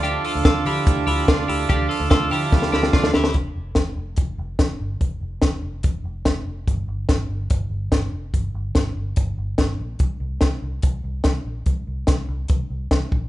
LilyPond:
<<
  \new Staff \with { instrumentName = "Transistor combo organ" } { \time 4/4 \key d \minor \tempo 4 = 144 <f' a' d''>1~ | <f' a' d''>2.~ <f' a' d''>8 r8 | r1 | r1 |
r1 | r1 | r1 | r1 | }
  \new Staff \with { instrumentName = "Clean electric guitar" } { \time 4/4 \key d \minor <d' g'>8 <f' a'>8 <f' a'>8 <e' g'>4 <e' g'>8 <d' f'>8 <e' g'>8 | <d' g'>8 <f' a'>8 <f' a'>8 <e' g'>4 <e' g'>8 <d' f'>8 <e' g'>8 | r1 | r1 |
r1 | r1 | r1 | r1 | }
  \new Staff \with { instrumentName = "Twelve-string acoustic guitar" } { \time 4/4 \key d \minor <d f d' f' a'>8. <d' f' a'>8. <d f d' f' a'>4 <f d' f' a'>8. <d' f' a'>8. | <f d' f' a'>8. <d' f' a'>8. <d f d' f' a'>4 <f d' f' a'>8. <d' f' a'>8. | r1 | r1 |
r1 | r1 | r1 | r1 | }
  \new Staff \with { instrumentName = "Fingered electric bass" } { \clef bass \time 4/4 \key d \minor d,8 r16 d,16 d,8 d8 d,8 d,8 d,8 d,8 | d,8 r16 d,16 d,8 d8 d,8 d,8 d,8 d,8 | f,,8 f,,8 f,,8 f,,8 f,,8 f,,8 f,,8 g,,8 | f,,8 f,,8 f,,8 f,,8 f,,8 f,,8 f,,8 f,,8 |
g,,8 g,,8 g,,8 g,,8 g,,8 g,,8 g,,8 f,,8 | g,,8 g,,8 g,,8 g,,8 g,,8 g,,8 g,,8 bes,,8 | c,8 c,8 c,8 c,8 c,8 c,8 c,8 bes,,8 | c,8 c,8 c,8 c,8 c,8 c,8 c,8 bes,,8 | }
  \new DrumStaff \with { instrumentName = "Drums" } \drummode { \time 4/4 <hhp cymr>8 hho8 <hhp bd cymr sn>8 hho8 <hhp bd cymr>8 hho8 <hhp bd cymr sn>8 hho8 | <hhp bd cymr>8 hho8 <hhp bd cymr sn>8 hho8 <bd sn>16 sn16 sn16 sn16 <bd sn>16 sn16 sn16 sn16 | <hh bd>4 <hh bd sn>4 <hh bd>4 <hh bd sn>4 | <hh bd>4 <hh bd sn>4 <hh bd>4 <hh bd sn>4 |
<hh bd>4 <hh bd sn>4 <hh bd>4 <hh bd sn>4 | <hh bd>4 <hh bd sn>4 <hh bd>4 <hh bd sn>4 | <hh bd>4 <hh bd sn>4 <hh bd>4 <hh bd sn>4 | <hh bd>4 <hh bd sn>4 <hh bd>4 <hh bd sn>8 bd8 | }
>>